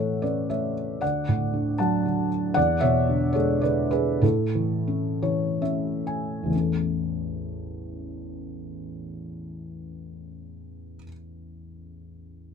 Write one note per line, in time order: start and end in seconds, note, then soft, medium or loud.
0.00 0.98 A2 soft
0.00 0.73 E3 soft
0.00 0.48 A3 soft
0.00 0.20 A4 soft
0.00 0.50 C#5 soft
0.00 0.50 E5 medium
0.00 1.02 F#5 medium
0.22 1.00 C#4 soft
0.22 0.47 B4 soft
0.22 0.47 D5 soft
0.50 1.00 A3 soft
0.50 0.98 C#5 soft
0.50 1.03 E5 medium
1.01 2.53 D2 soft
1.01 1.75 D5 soft
1.01 1.78 F#5 medium
1.29 2.29 A2 soft
1.53 2.04 D3 soft
1.78 2.55 F#3 soft
1.78 2.28 F#5 medium
1.78 2.27 A5 medium
2.06 2.56 D3 soft
2.54 4.19 E2 soft
2.54 2.81 D5 medium
2.54 2.83 F#5 medium
2.81 3.88 B2 soft
2.81 3.31 C#5 medium
2.81 3.36 E5 medium
3.09 3.62 D3 soft
3.33 4.20 G#3 medium
3.33 3.61 A4 medium
3.33 3.63 C#5 medium
3.61 4.21 D3 soft
3.61 3.89 B4 medium
3.61 3.89 D5 medium
3.91 4.21 G#4 medium
3.91 4.23 B4 medium
4.21 6.49 A2 medium
4.21 5.60 E4 medium
4.21 5.60 A4 medium
4.55 5.21 E3 soft
4.88 5.60 C#4 soft
5.22 6.48 E3 soft
5.22 5.60 C#5 medium
5.61 6.49 C#4 soft
5.61 6.03 E5 medium
6.07 6.49 G#5 soft
6.43 10.96 A1 soft
6.43 10.98 E2 soft
6.50 11.02 E3 soft
6.50 11.05 A3 soft
6.55 11.08 C#4 soft
6.55 11.11 A4 soft